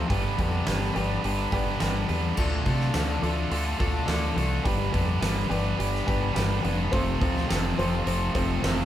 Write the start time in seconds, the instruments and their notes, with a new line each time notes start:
0.08 fingered electric bass G1, overdriven electric guitar G2 D3 G3 B3 D4 B4, upright piano G4 B4 D5, kick, open hi-hat
0.36 fingered electric bass F2, overdriven electric guitar G2 D3 G3 B3 D4 B4, upright piano G4 B4, kick, open hi-hat
0.40 upright piano D5
0.65 fingered electric bass G1, overdriven electric guitar G2 D3 G3 B3 D4 B4, upright piano G4 B4 D5, snare, open hi-hat
0.82 snare
0.92 fingered electric bass G1, overdriven electric guitar G2 D3 G3 B3 D4 B4, upright piano G4 B4, open hi-hat
0.96 upright piano D5
1.22 fingered electric bass G1, overdriven electric guitar G2 D3 G3 B3 D4 B4, upright piano G4 B4 D5, open hi-hat
1.51 fingered electric bass G1, overdriven electric guitar G2 D3 G3 B3 D4 B4, upright piano G4 B4 D5, kick, open hi-hat
1.79 fingered electric bass G1, overdriven electric guitar G2 D3 G3 B3 D4 B4, upright piano G4 B4 D5, snare, open hi-hat
2.07 fingered electric bass E2, overdriven electric guitar G2 D3 G3 B3 D4 B4, upright piano G4 B4 D5, open hi-hat
2.35 fingered electric bass D2, overdriven electric guitar D3 A3 D4 F4 A4, upright piano F4 A4 D5, kick, crash
2.64 fingered electric bass C3, overdriven electric guitar D3 A3 D4 F4 A4, upright piano F4 A4 D5, kick, open hi-hat
2.80 snare
2.93 fingered electric bass D2, overdriven electric guitar D3 A3 D4 F4 A4, upright piano F4 A4 F5, snare, open hi-hat
3.22 fingered electric bass D2, overdriven electric guitar D3 A3 D4 F4 A4, upright piano F4 A4 D5, open hi-hat
3.50 fingered electric bass D2, overdriven electric guitar D3 A3 D4 F4 A4, upright piano F4 A4 D5, open hi-hat
3.79 fingered electric bass D2, overdriven electric guitar D3 A3 D4 F4 A4, upright piano F4 A4 D5, kick, open hi-hat
4.06 fingered electric bass D2, overdriven electric guitar D3 A3 D4 F4 A4, upright piano F4 A4 D5, snare, open hi-hat
4.36 fingered electric bass C2, overdriven electric guitar D3 A3 D4 F4 A4, upright piano F4 A4 D5, open hi-hat
4.64 fingered electric bass G1, overdriven electric guitar G2 D3 G3 B3 D4 B4, upright piano G4 B4 D5, kick, open hi-hat
4.91 fingered electric bass F2, overdriven electric guitar G2 D3 G3 B3 D4 B4, upright piano G4 B4 D5, kick, open hi-hat
5.19 fingered electric bass G1, overdriven electric guitar G2 D3 G3 B3 D4 B4, upright piano G4 B4 D5, snare, open hi-hat
5.48 fingered electric bass G1, overdriven electric guitar G2 D3 G3 B3 D4 B4, upright piano G4 B4 D5, open hi-hat
5.76 fingered electric bass G1, overdriven electric guitar G2 D3 G3 B3 D4 B4, upright piano G4 B4 D5, open hi-hat
5.95 snare
6.05 fingered electric bass G1, overdriven electric guitar G2 D3 G3 B3 D4 B4, upright piano G4 B4 D5 B5, kick, open hi-hat
6.21 upright piano A5
6.33 fingered electric bass G1, overdriven electric guitar G2 D3 G3 B3 D4 B4, upright piano G4 B4 D5 G5, snare, open hi-hat
6.61 fingered electric bass F1, overdriven electric guitar G2 D3 G3 B3 D4 B4, upright piano G4 B4 D5 F5, open hi-hat
6.91 fingered electric bass F1, overdriven electric guitar F2 C3 F3 A3 C4 F4 A4, upright piano F4 A4 C5, kick, open hi-hat
7.20 fingered electric bass D2, overdriven electric guitar F2 C3 F3 A3 C4 F4 A4, upright piano F4 A4 C5, kick, open hi-hat
7.37 snare
7.48 fingered electric bass F1, overdriven electric guitar F2 C3 F3 A3 C4 F4 A4, upright piano F4 A4 B4, snare, open hi-hat
7.77 fingered electric bass F1, overdriven electric guitar F2 C3 F3 A3 C4 F4 A4, upright piano F4 A4 C5, open hi-hat
8.04 fingered electric bass F1, overdriven electric guitar F2 C3 F3 A3 C4 F4 A4, upright piano F4 A4 C5, open hi-hat
8.34 fingered electric bass F1, overdriven electric guitar F2 C3 F3 A3 C4 F4 A4, upright piano F4 A4 C5, kick, open hi-hat
8.62 fingered electric bass F1, overdriven electric guitar F2 C3 F3 A3 C4 F4 A4, upright piano F4 A4 C5, snare, open hi-hat